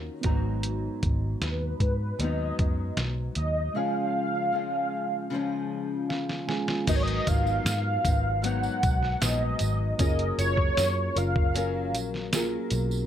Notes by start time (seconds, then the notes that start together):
Already playing: D#3 A#3 C#4 F4 F#4 A#4
0.21 G#1 B3 D#4 F#4, kick, closed hi-hat
0.25 G#2 F#3 B3 A#5
0.63 closed hi-hat
1.03 G#1, kick, closed hi-hat
1.42 D#2 B4, snare, closed hi-hat
1.80 G#2, kick, closed hi-hat
2.19 D#2 G#2 F#3 B3 D#5, closed hi-hat
2.24 D#4
2.59 F#2, kick, closed hi-hat
2.97 B1, snare, closed hi-hat
3.35 D#2 D#5, closed hi-hat
3.74 C#3 F3 G#3 C#4 F4 F5
3.79 G#4
4.52 C#3 F3 G#3 C#4
5.30 C#3 F3
5.34 G#3 C#4
6.10 F5, snare
6.29 snare
6.47 G#3 C#4 F4 G#4 G#5, snare
6.68 snare
6.85 G#1 G#2 F#3 B3 D#4 F#4 D#5, kick, closed hi-hat, crash, tambourine
6.89 D#4 A#4
6.95 C#5
7.02 D#5
7.08 closed hi-hat
7.27 G#1 F5, kick, closed hi-hat, tambourine
7.47 tambourine
7.65 G#2, snare, closed hi-hat, tambourine
8.04 G#1 F#3 B3 D#4, kick, closed hi-hat, tambourine
8.42 G#2 F#3 B3 D#4 F#5, closed hi-hat, tambourine
8.63 tambourine
8.83 B1, kick, closed hi-hat, tambourine
9.02 snare
9.20 A#1 G#2 F#3 B3 D#4 D#5, snare, closed hi-hat, tambourine
9.59 G#1, closed hi-hat, tambourine
9.98 F#1 F#3 A#3 C#4 F4 A#4 D#5, kick, closed hi-hat, tambourine
10.03 G#4
10.19 closed hi-hat
10.38 F#1 C#5, closed hi-hat, tambourine
10.57 kick
10.77 F#2, snare, closed hi-hat, tambourine
11.15 F#1 C#4 F4 A#4 F5, closed hi-hat, tambourine
11.36 kick
11.54 F#3 C#4 F4 A#4, closed hi-hat, tambourine
11.94 A#1, closed hi-hat, tambourine
12.14 snare
12.32 F#3 A#3 C#4 F4 G#4, snare, closed hi-hat, tambourine
12.36 A#4
12.71 B1, closed hi-hat, tambourine
12.91 tambourine